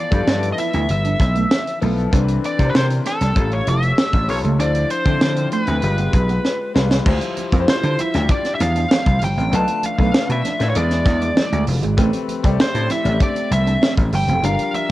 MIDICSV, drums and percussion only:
0, 0, Header, 1, 2, 480
1, 0, Start_track
1, 0, Tempo, 616016
1, 1658, Time_signature, 4, 2, 24, 8
1, 11619, End_track
2, 0, Start_track
2, 0, Title_t, "Drums"
2, 93, Note_on_c, 9, 36, 75
2, 95, Note_on_c, 9, 42, 50
2, 171, Note_off_c, 9, 36, 0
2, 173, Note_off_c, 9, 42, 0
2, 215, Note_on_c, 9, 38, 94
2, 293, Note_off_c, 9, 38, 0
2, 333, Note_on_c, 9, 42, 51
2, 411, Note_off_c, 9, 42, 0
2, 452, Note_on_c, 9, 42, 66
2, 530, Note_off_c, 9, 42, 0
2, 571, Note_on_c, 9, 42, 51
2, 649, Note_off_c, 9, 42, 0
2, 692, Note_on_c, 9, 42, 71
2, 770, Note_off_c, 9, 42, 0
2, 816, Note_on_c, 9, 42, 39
2, 894, Note_off_c, 9, 42, 0
2, 934, Note_on_c, 9, 36, 85
2, 935, Note_on_c, 9, 42, 66
2, 939, Note_on_c, 9, 38, 28
2, 1011, Note_off_c, 9, 36, 0
2, 1013, Note_off_c, 9, 42, 0
2, 1017, Note_off_c, 9, 38, 0
2, 1057, Note_on_c, 9, 42, 39
2, 1134, Note_off_c, 9, 42, 0
2, 1179, Note_on_c, 9, 38, 99
2, 1257, Note_off_c, 9, 38, 0
2, 1303, Note_on_c, 9, 42, 43
2, 1381, Note_off_c, 9, 42, 0
2, 1418, Note_on_c, 9, 46, 63
2, 1495, Note_off_c, 9, 46, 0
2, 1541, Note_on_c, 9, 42, 44
2, 1619, Note_off_c, 9, 42, 0
2, 1658, Note_on_c, 9, 36, 100
2, 1660, Note_on_c, 9, 42, 80
2, 1736, Note_off_c, 9, 36, 0
2, 1737, Note_off_c, 9, 42, 0
2, 1778, Note_on_c, 9, 42, 51
2, 1856, Note_off_c, 9, 42, 0
2, 1901, Note_on_c, 9, 42, 57
2, 1979, Note_off_c, 9, 42, 0
2, 2019, Note_on_c, 9, 36, 79
2, 2022, Note_on_c, 9, 42, 50
2, 2096, Note_off_c, 9, 36, 0
2, 2100, Note_off_c, 9, 42, 0
2, 2141, Note_on_c, 9, 38, 95
2, 2219, Note_off_c, 9, 38, 0
2, 2261, Note_on_c, 9, 42, 51
2, 2339, Note_off_c, 9, 42, 0
2, 2380, Note_on_c, 9, 42, 66
2, 2385, Note_on_c, 9, 38, 32
2, 2458, Note_off_c, 9, 42, 0
2, 2463, Note_off_c, 9, 38, 0
2, 2497, Note_on_c, 9, 42, 53
2, 2504, Note_on_c, 9, 38, 34
2, 2575, Note_off_c, 9, 42, 0
2, 2582, Note_off_c, 9, 38, 0
2, 2614, Note_on_c, 9, 42, 72
2, 2617, Note_on_c, 9, 36, 88
2, 2692, Note_off_c, 9, 42, 0
2, 2695, Note_off_c, 9, 36, 0
2, 2738, Note_on_c, 9, 42, 39
2, 2816, Note_off_c, 9, 42, 0
2, 2858, Note_on_c, 9, 42, 64
2, 2935, Note_off_c, 9, 42, 0
2, 2980, Note_on_c, 9, 42, 41
2, 3058, Note_off_c, 9, 42, 0
2, 3101, Note_on_c, 9, 38, 107
2, 3179, Note_off_c, 9, 38, 0
2, 3219, Note_on_c, 9, 36, 88
2, 3222, Note_on_c, 9, 42, 44
2, 3297, Note_off_c, 9, 36, 0
2, 3300, Note_off_c, 9, 42, 0
2, 3338, Note_on_c, 9, 46, 66
2, 3416, Note_off_c, 9, 46, 0
2, 3463, Note_on_c, 9, 42, 41
2, 3541, Note_off_c, 9, 42, 0
2, 3582, Note_on_c, 9, 42, 78
2, 3660, Note_off_c, 9, 42, 0
2, 3699, Note_on_c, 9, 42, 56
2, 3776, Note_off_c, 9, 42, 0
2, 3819, Note_on_c, 9, 42, 62
2, 3897, Note_off_c, 9, 42, 0
2, 3940, Note_on_c, 9, 36, 81
2, 3943, Note_on_c, 9, 42, 45
2, 4018, Note_off_c, 9, 36, 0
2, 4021, Note_off_c, 9, 42, 0
2, 4062, Note_on_c, 9, 38, 105
2, 4140, Note_off_c, 9, 38, 0
2, 4180, Note_on_c, 9, 42, 49
2, 4258, Note_off_c, 9, 42, 0
2, 4298, Note_on_c, 9, 42, 65
2, 4376, Note_off_c, 9, 42, 0
2, 4417, Note_on_c, 9, 42, 49
2, 4495, Note_off_c, 9, 42, 0
2, 4535, Note_on_c, 9, 42, 69
2, 4613, Note_off_c, 9, 42, 0
2, 4658, Note_on_c, 9, 42, 42
2, 4736, Note_off_c, 9, 42, 0
2, 4777, Note_on_c, 9, 42, 66
2, 4778, Note_on_c, 9, 36, 81
2, 4855, Note_off_c, 9, 42, 0
2, 4856, Note_off_c, 9, 36, 0
2, 4900, Note_on_c, 9, 42, 38
2, 4978, Note_off_c, 9, 42, 0
2, 5022, Note_on_c, 9, 38, 54
2, 5100, Note_off_c, 9, 38, 0
2, 5264, Note_on_c, 9, 38, 80
2, 5342, Note_off_c, 9, 38, 0
2, 5383, Note_on_c, 9, 38, 77
2, 5461, Note_off_c, 9, 38, 0
2, 5499, Note_on_c, 9, 49, 87
2, 5501, Note_on_c, 9, 36, 105
2, 5504, Note_on_c, 9, 62, 30
2, 5504, Note_on_c, 9, 64, 61
2, 5577, Note_off_c, 9, 49, 0
2, 5579, Note_off_c, 9, 36, 0
2, 5582, Note_off_c, 9, 62, 0
2, 5582, Note_off_c, 9, 64, 0
2, 5618, Note_on_c, 9, 42, 51
2, 5622, Note_on_c, 9, 62, 28
2, 5622, Note_on_c, 9, 63, 50
2, 5696, Note_off_c, 9, 42, 0
2, 5700, Note_off_c, 9, 62, 0
2, 5700, Note_off_c, 9, 63, 0
2, 5740, Note_on_c, 9, 42, 61
2, 5744, Note_on_c, 9, 63, 68
2, 5818, Note_off_c, 9, 42, 0
2, 5822, Note_off_c, 9, 63, 0
2, 5863, Note_on_c, 9, 36, 80
2, 5866, Note_on_c, 9, 42, 46
2, 5941, Note_off_c, 9, 36, 0
2, 5944, Note_off_c, 9, 42, 0
2, 5986, Note_on_c, 9, 38, 103
2, 6064, Note_off_c, 9, 38, 0
2, 6104, Note_on_c, 9, 42, 50
2, 6104, Note_on_c, 9, 62, 29
2, 6182, Note_off_c, 9, 42, 0
2, 6182, Note_off_c, 9, 62, 0
2, 6218, Note_on_c, 9, 63, 60
2, 6224, Note_on_c, 9, 42, 61
2, 6296, Note_off_c, 9, 63, 0
2, 6302, Note_off_c, 9, 42, 0
2, 6342, Note_on_c, 9, 42, 56
2, 6348, Note_on_c, 9, 38, 32
2, 6420, Note_off_c, 9, 42, 0
2, 6426, Note_off_c, 9, 38, 0
2, 6458, Note_on_c, 9, 42, 82
2, 6462, Note_on_c, 9, 36, 90
2, 6536, Note_off_c, 9, 42, 0
2, 6539, Note_off_c, 9, 36, 0
2, 6580, Note_on_c, 9, 62, 29
2, 6582, Note_on_c, 9, 42, 39
2, 6584, Note_on_c, 9, 38, 34
2, 6658, Note_off_c, 9, 62, 0
2, 6660, Note_off_c, 9, 42, 0
2, 6662, Note_off_c, 9, 38, 0
2, 6699, Note_on_c, 9, 63, 66
2, 6702, Note_on_c, 9, 42, 69
2, 6705, Note_on_c, 9, 38, 28
2, 6777, Note_off_c, 9, 63, 0
2, 6780, Note_off_c, 9, 42, 0
2, 6783, Note_off_c, 9, 38, 0
2, 6823, Note_on_c, 9, 42, 44
2, 6901, Note_off_c, 9, 42, 0
2, 6938, Note_on_c, 9, 62, 32
2, 6938, Note_on_c, 9, 63, 67
2, 6945, Note_on_c, 9, 38, 111
2, 7015, Note_off_c, 9, 62, 0
2, 7015, Note_off_c, 9, 63, 0
2, 7023, Note_off_c, 9, 38, 0
2, 7062, Note_on_c, 9, 36, 87
2, 7066, Note_on_c, 9, 42, 43
2, 7140, Note_off_c, 9, 36, 0
2, 7143, Note_off_c, 9, 42, 0
2, 7179, Note_on_c, 9, 46, 69
2, 7182, Note_on_c, 9, 63, 63
2, 7182, Note_on_c, 9, 64, 67
2, 7257, Note_off_c, 9, 46, 0
2, 7260, Note_off_c, 9, 63, 0
2, 7260, Note_off_c, 9, 64, 0
2, 7304, Note_on_c, 9, 42, 43
2, 7382, Note_off_c, 9, 42, 0
2, 7419, Note_on_c, 9, 62, 29
2, 7419, Note_on_c, 9, 64, 59
2, 7422, Note_on_c, 9, 42, 82
2, 7496, Note_off_c, 9, 62, 0
2, 7496, Note_off_c, 9, 64, 0
2, 7500, Note_off_c, 9, 42, 0
2, 7536, Note_on_c, 9, 63, 50
2, 7539, Note_on_c, 9, 42, 54
2, 7614, Note_off_c, 9, 63, 0
2, 7617, Note_off_c, 9, 42, 0
2, 7656, Note_on_c, 9, 63, 63
2, 7660, Note_on_c, 9, 42, 64
2, 7734, Note_off_c, 9, 63, 0
2, 7738, Note_off_c, 9, 42, 0
2, 7780, Note_on_c, 9, 36, 77
2, 7783, Note_on_c, 9, 42, 51
2, 7858, Note_off_c, 9, 36, 0
2, 7861, Note_off_c, 9, 42, 0
2, 7904, Note_on_c, 9, 38, 108
2, 7982, Note_off_c, 9, 38, 0
2, 8016, Note_on_c, 9, 62, 30
2, 8022, Note_on_c, 9, 42, 50
2, 8094, Note_off_c, 9, 62, 0
2, 8100, Note_off_c, 9, 42, 0
2, 8132, Note_on_c, 9, 63, 59
2, 8140, Note_on_c, 9, 42, 66
2, 8145, Note_on_c, 9, 38, 33
2, 8210, Note_off_c, 9, 63, 0
2, 8218, Note_off_c, 9, 42, 0
2, 8223, Note_off_c, 9, 38, 0
2, 8258, Note_on_c, 9, 42, 49
2, 8264, Note_on_c, 9, 38, 32
2, 8336, Note_off_c, 9, 42, 0
2, 8342, Note_off_c, 9, 38, 0
2, 8371, Note_on_c, 9, 62, 25
2, 8377, Note_on_c, 9, 42, 74
2, 8449, Note_off_c, 9, 62, 0
2, 8454, Note_off_c, 9, 42, 0
2, 8500, Note_on_c, 9, 42, 43
2, 8502, Note_on_c, 9, 38, 38
2, 8578, Note_off_c, 9, 42, 0
2, 8580, Note_off_c, 9, 38, 0
2, 8610, Note_on_c, 9, 63, 66
2, 8616, Note_on_c, 9, 36, 87
2, 8618, Note_on_c, 9, 42, 69
2, 8621, Note_on_c, 9, 38, 31
2, 8688, Note_off_c, 9, 63, 0
2, 8693, Note_off_c, 9, 36, 0
2, 8696, Note_off_c, 9, 42, 0
2, 8699, Note_off_c, 9, 38, 0
2, 8739, Note_on_c, 9, 42, 41
2, 8817, Note_off_c, 9, 42, 0
2, 8846, Note_on_c, 9, 63, 68
2, 8859, Note_on_c, 9, 38, 98
2, 8924, Note_off_c, 9, 63, 0
2, 8937, Note_off_c, 9, 38, 0
2, 8969, Note_on_c, 9, 62, 29
2, 8980, Note_on_c, 9, 42, 45
2, 9047, Note_off_c, 9, 62, 0
2, 9058, Note_off_c, 9, 42, 0
2, 9091, Note_on_c, 9, 63, 63
2, 9091, Note_on_c, 9, 64, 70
2, 9093, Note_on_c, 9, 46, 68
2, 9169, Note_off_c, 9, 63, 0
2, 9169, Note_off_c, 9, 64, 0
2, 9170, Note_off_c, 9, 46, 0
2, 9216, Note_on_c, 9, 42, 46
2, 9294, Note_off_c, 9, 42, 0
2, 9327, Note_on_c, 9, 62, 30
2, 9327, Note_on_c, 9, 64, 67
2, 9331, Note_on_c, 9, 42, 88
2, 9333, Note_on_c, 9, 36, 95
2, 9405, Note_off_c, 9, 62, 0
2, 9405, Note_off_c, 9, 64, 0
2, 9408, Note_off_c, 9, 42, 0
2, 9411, Note_off_c, 9, 36, 0
2, 9447, Note_on_c, 9, 63, 51
2, 9451, Note_on_c, 9, 42, 56
2, 9525, Note_off_c, 9, 63, 0
2, 9529, Note_off_c, 9, 42, 0
2, 9570, Note_on_c, 9, 63, 70
2, 9573, Note_on_c, 9, 42, 64
2, 9648, Note_off_c, 9, 63, 0
2, 9651, Note_off_c, 9, 42, 0
2, 9693, Note_on_c, 9, 36, 81
2, 9696, Note_on_c, 9, 42, 52
2, 9771, Note_off_c, 9, 36, 0
2, 9774, Note_off_c, 9, 42, 0
2, 9816, Note_on_c, 9, 38, 116
2, 9894, Note_off_c, 9, 38, 0
2, 9931, Note_on_c, 9, 42, 52
2, 10009, Note_off_c, 9, 42, 0
2, 10045, Note_on_c, 9, 63, 64
2, 10049, Note_on_c, 9, 42, 69
2, 10054, Note_on_c, 9, 38, 33
2, 10123, Note_off_c, 9, 63, 0
2, 10127, Note_off_c, 9, 42, 0
2, 10132, Note_off_c, 9, 38, 0
2, 10168, Note_on_c, 9, 42, 54
2, 10246, Note_off_c, 9, 42, 0
2, 10286, Note_on_c, 9, 42, 79
2, 10289, Note_on_c, 9, 36, 86
2, 10364, Note_off_c, 9, 42, 0
2, 10367, Note_off_c, 9, 36, 0
2, 10406, Note_on_c, 9, 62, 28
2, 10409, Note_on_c, 9, 42, 40
2, 10484, Note_off_c, 9, 62, 0
2, 10487, Note_off_c, 9, 42, 0
2, 10524, Note_on_c, 9, 63, 61
2, 10530, Note_on_c, 9, 42, 69
2, 10602, Note_off_c, 9, 63, 0
2, 10608, Note_off_c, 9, 42, 0
2, 10651, Note_on_c, 9, 42, 42
2, 10729, Note_off_c, 9, 42, 0
2, 10765, Note_on_c, 9, 62, 32
2, 10765, Note_on_c, 9, 63, 68
2, 10775, Note_on_c, 9, 38, 106
2, 10843, Note_off_c, 9, 62, 0
2, 10843, Note_off_c, 9, 63, 0
2, 10853, Note_off_c, 9, 38, 0
2, 10890, Note_on_c, 9, 36, 92
2, 10893, Note_on_c, 9, 42, 46
2, 10968, Note_off_c, 9, 36, 0
2, 10971, Note_off_c, 9, 42, 0
2, 11006, Note_on_c, 9, 46, 69
2, 11009, Note_on_c, 9, 63, 70
2, 11009, Note_on_c, 9, 64, 64
2, 11084, Note_off_c, 9, 46, 0
2, 11087, Note_off_c, 9, 63, 0
2, 11087, Note_off_c, 9, 64, 0
2, 11131, Note_on_c, 9, 42, 45
2, 11209, Note_off_c, 9, 42, 0
2, 11245, Note_on_c, 9, 62, 30
2, 11245, Note_on_c, 9, 64, 63
2, 11248, Note_on_c, 9, 42, 87
2, 11323, Note_off_c, 9, 62, 0
2, 11323, Note_off_c, 9, 64, 0
2, 11326, Note_off_c, 9, 42, 0
2, 11364, Note_on_c, 9, 63, 49
2, 11367, Note_on_c, 9, 42, 55
2, 11442, Note_off_c, 9, 63, 0
2, 11445, Note_off_c, 9, 42, 0
2, 11483, Note_on_c, 9, 63, 66
2, 11488, Note_on_c, 9, 42, 62
2, 11561, Note_off_c, 9, 63, 0
2, 11566, Note_off_c, 9, 42, 0
2, 11619, End_track
0, 0, End_of_file